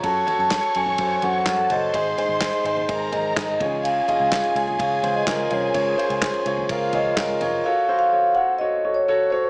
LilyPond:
<<
  \new Staff \with { instrumentName = "Vibraphone" } { \time 4/4 \key ges \lydian \tempo 4 = 126 a''8. a''8. aes''4 ges''8 ges''8 ees''8~ | ees''2~ ees''8 ees''4. | f''8. f''8. aes''8 f''8. ees''8. des''8~ | des''4. r4 ees''4. |
f''8. f''8. ges''8 ees''8. des''8. c''8 | }
  \new Staff \with { instrumentName = "Violin section" } { \time 4/4 \key ges \lydian <des'' des'''>2. <a' a''>4 | <c'' c'''>2 <bes' bes''>4. <aes' aes''>8~ | <aes' aes''>1~ | <aes' aes''>2 <f' f''>4. r8 |
r1 | }
  \new Staff \with { instrumentName = "Grand piano" } { \time 4/4 \key ges \lydian <ges' a' des''>8 <ges' a' des''>8 <ges' a' des''>8 <ges' a' des''>8 <ges' a' c''>8 <ges' a' des''>8 <ges' a' des''>8 <ges' a' c''>8 | <ees' aes' c''>8 <ees' aes' c''>8 <ees' aes' c''>8 <ees' aes' c''>8 <ees' aes' c''>8 <ees' aes' c''>8 <ees' aes' ees''>8 <f' aes' des''>8~ | <f' aes' des''>8 <f' aes' ees''>8 <f' aes' des''>8 <f' aes' des''>8 <f' aes' des''>8 <f' aes' c''>8 <f' aes' bes'>8 <f' aes' c''>8 | <f' aes' des''>8 <f' aes' c''>8 <f' aes' c''>8 <f' aes' des''>8 <f' aes' bes'>8 <f' aes' des''>8 <f' aes' bes'>8 <f' aes' des''>8 |
<ges' a' des''>8 <ges' a' c''>8 <ges' a' des''>8 <ges' a' des''>8 <ges' a' des''>8 <ges' a' des''>8 <ges' a' des''>8 <ges' a' des''>8 | }
  \new Staff \with { instrumentName = "Grand piano" } { \clef bass \time 4/4 \key ges \lydian r1 | aes,4. r2 des8~ | des4 r2 r8 des8~ | des4 r2. |
r1 | }
  \new Staff \with { instrumentName = "Picked electric bass" } { \clef bass \time 4/4 \key ges \lydian ges,8 r16 ges,8 r16 ges,8 ges,8 ges,8 ges,8 ges,,8 | aes,,8 r16 aes,,8 r16 aes,,8 aes,,8 aes,,8 aes,,8 des,8~ | des,8 r16 des,8 r16 des,8 des,8 des,8 des,8 c,8 | des,8 r16 des,8 r16 des,8 des,8 des,8 des,8 f,,8 |
r1 | }
  \new DrumStaff \with { instrumentName = "Drums" } \drummode { \time 4/4 <bd cymr>8 <cymr tomfh>8 <hc bd cymr sn>16 cymr16 cymr16 tomfh16 <bd cymr>8 <cymr tomfh>8 <hc bd cymr sn>8 <cymr tomfh>8 | <bd cymr>8 <cymr tomfh>8 <hc bd cymr sn>16 cymr16 cymr16 tomfh16 <bd cymr>8 <cymr tomfh>8 <hc bd cymr sn>8 <bd cymr tomfh>8 | cymr8 <cymr tomfh>8 <hc bd cymr sn>16 cymr16 cymr16 tomfh16 <bd cymr>8 <cymr tomfh>8 <hc bd cymr sn>8 <cymr tomfh>8 | <bd cymr>8 cymr16 cymr16 <hc bd cymr sn>16 cymr16 cymr16 tomfh16 <bd cymr>8 <cymr tomfh>8 <hc bd cymr sn>8 <cymr tomfh>8 |
r4 r4 r4 r4 | }
>>